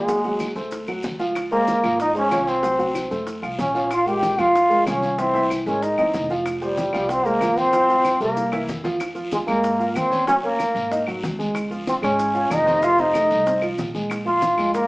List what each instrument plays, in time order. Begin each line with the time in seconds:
Already playing: upright bass D#2, trombone G#3, flute G#4
0.08 grand piano F#3 F#4 F#5, high bongo, high conga, long guiro, maracas
0.24 grand piano F#3 F#4 F#5, high conga, maracas
0.39 high bongo, high conga, short guiro, claves, maracas
0.55 upright bass D2, grand piano A3 A4 C5, high bongo, high conga, short guiro, maracas
0.71 high bongo, high conga, long guiro, maracas
0.87 grand piano F#3 F#4 F#5, high bongo, high conga, claves, maracas
1.03 upright bass C#2, high bongo, low bongo, high conga, short guiro, maracas
1.19 grand piano F3 F4 F5, high bongo, short guiro, maracas
1.35 high bongo, high conga, long guiro, claves, maracas
1.51 grand piano G#3 G#4 C5, trombone A#3, flute A#4, high conga, maracas
1.67 high bongo, high conga, short guiro, maracas
1.83 upright bass G#1, grand piano F3 F4 F5, short guiro, claves, maracas
1.99 trombone D#4, flute D#5, high bongo, high conga, long guiro, maracas
2.15 grand piano G#3 G#4 C5, trombone C#4, flute C#5, high conga, maracas
2.31 upright bass C2, grand piano F3 F4 F5, high bongo, low bongo, high conga, short guiro, claves, maracas
2.47 trombone C4, flute C5, high bongo, short guiro, maracas
2.63 grand piano F#3 F#4 F#5, high bongo, high conga, long guiro, maracas
2.79 grand piano F#3 F#4 F#5, high conga, maracas
2.95 high bongo, high conga, short guiro, claves, maracas
3.11 upright bass F2, grand piano A3 A4 C5, high bongo, high conga, short guiro, maracas
3.27 high bongo, high conga, long guiro, maracas
3.42 upright bass C2, grand piano F3 F4 F5, high bongo, high conga, claves, maracas
3.59 upright bass A#1, trombone C#4, flute C#5, high bongo, low bongo, high conga, short guiro, maracas
3.74 grand piano F3 F4 F5, high bongo, short guiro, maracas
3.91 trombone F4, flute F5, high bongo, high conga, long guiro, claves, maracas
4.06 grand piano G#3 F4 A#4, trombone G4, flute G5, high conga, maracas
4.22 high bongo, high conga, short guiro, maracas
4.38 upright bass F2, grand piano F3 F4 F5, trombone F4, flute F5, high bongo, short guiro, claves, maracas
4.55 high bongo, high conga, long guiro, maracas
4.70 grand piano G#3 G#4 A#4, high bongo, high conga, maracas
4.86 upright bass C2, grand piano F3 F4 F5, trombone C#4, flute C#5, high bongo, low bongo, high conga, short guiro, claves, maracas
5.02 high bongo, high conga, short guiro, maracas
5.18 grand piano E3 E4 E5, trombone C4, flute C5, high bongo, high conga, long guiro, maracas
5.34 grand piano E3 E4 E5, maracas
5.50 high bongo, high conga, short guiro, claves, maracas
5.66 upright bass G#1, grand piano G#3 G#4 A#4, trombone C#4, flute C#5, high bongo, high conga, short guiro, maracas
5.82 trombone D#4, flute D#5, high bongo, high conga, long guiro, maracas
5.98 upright bass F#1, grand piano E3 C4 D#5, high bongo, high conga, claves, maracas
6.13 upright bass F1, high bongo, low bongo, high conga, short guiro, maracas
6.30 grand piano F3 F4 F5, high bongo, short guiro, maracas
6.46 high bongo, high conga, long guiro, claves, maracas
6.61 grand piano F3 G4 C5, trombone G3, flute G4, high conga, maracas
6.77 high bongo, high conga, short guiro, maracas
6.93 upright bass C2, grand piano F3 F4 F5, high bongo, short guiro, claves, maracas
7.09 trombone C4, flute C5, high bongo, high conga, long guiro, maracas
7.25 grand piano G#3 G#4 C5, trombone A#3, flute A#4, high bongo, high conga, maracas
7.41 upright bass G1, grand piano F3 F4 F5, high bongo, low bongo, high conga, short guiro, claves, maracas
7.57 trombone C4, flute C5, high bongo, high conga, short guiro, maracas
7.73 grand piano F3 F4 F5, high bongo, high conga, long guiro, maracas
7.88 grand piano F3 F4 F5, high conga, maracas
8.05 high bongo, high conga, short guiro, claves, maracas
8.20 upright bass C2, grand piano G3 G4 A#4, trombone A#3, flute A#4, high bongo, high conga, short guiro, maracas
8.37 high bongo, high conga, long guiro, maracas
8.52 grand piano E3 E4 E5, high bongo, high conga, claves, maracas
8.68 upright bass F2, low bongo, high conga, short guiro, maracas
8.84 grand piano F3 F4 F5, low bongo, high conga, short guiro, maracas
9.00 high bongo, high conga, long guiro, claves, maracas
9.15 grand piano F3 F4, high conga, maracas
9.31 trombone G#3, flute G#4, high bongo, high conga, short guiro, maracas
9.47 upright bass G#2, grand piano G#3 G#4, trombone A#3, flute A#4, high bongo, short guiro, claves, maracas
9.64 high bongo, high conga, long guiro, maracas
9.79 grand piano F4 F5, high bongo, high conga, maracas
9.88 trombone A#3, flute A#4
9.95 upright bass D#2, trombone C4, flute C5, high bongo, low bongo, high conga, short guiro, claves, maracas
10.11 grand piano C#4 C#5, high bongo, high conga, short guiro, maracas
10.26 grand piano F#3 F#4, trombone C#4, flute C#5, high bongo, high conga, long guiro, maracas
10.43 trombone A#3, grand piano C#4 C#5, flute A#4, high conga, maracas
10.59 grand piano A#3 A#4, high bongo, high conga, short guiro, claves, maracas
10.75 upright bass G#1, high bongo, high conga, short guiro, maracas
10.91 grand piano D#4 D#5, high bongo, high conga, long guiro, maracas
11.07 grand piano F#3 F#4, high bongo, high conga, claves, maracas
11.23 upright bass C#2, high bongo, low bongo, high conga, short guiro, maracas
11.39 grand piano G#3 G#4, high bongo, high conga, short guiro, maracas
11.55 high bongo, high conga, long guiro, claves, maracas
11.70 grand piano F3 F4, high conga, maracas
11.87 trombone C4, flute C5, high bongo, high conga, short guiro, maracas
12.02 upright bass G#1, grand piano G#3 G#4, trombone C#4, flute C#5, high bongo, short guiro, claves, maracas
12.19 high bongo, high conga, long guiro, maracas
12.34 grand piano F4 F5, high bongo, high conga, maracas
12.50 upright bass F1, flute D#5, high bongo, low bongo, high conga, short guiro, claves, maracas
12.54 trombone D#4
12.66 grand piano C4 C5, high bongo, high conga, short guiro, maracas
12.82 grand piano F3 F4, trombone F4, flute F5, high bongo, high conga, long guiro, maracas
12.98 grand piano C4 C5, trombone D#4, flute D#5, high conga, maracas
13.14 grand piano A3 A4, high bongo, high conga, short guiro, claves, maracas
13.30 upright bass C2, high conga, short guiro, maracas
13.46 grand piano C4 C5, high bongo, high conga, long guiro, maracas
13.62 grand piano F3 F4, high bongo, high conga, claves, maracas
13.78 upright bass A#1, high bongo, low bongo, high conga, short guiro, maracas
13.94 grand piano G#3 G#4, high bongo, high conga, short guiro, maracas
14.10 high bongo, high conga, long guiro, claves, maracas
14.25 grand piano F3 F4, trombone F4, flute F5, high conga, maracas
14.42 high bongo, high conga, short guiro, maracas
14.58 upright bass F2, grand piano G#3 G#4, high bongo, short guiro, claves, maracas
14.74 trombone A#3, flute A#4, high bongo, high conga, long guiro, maracas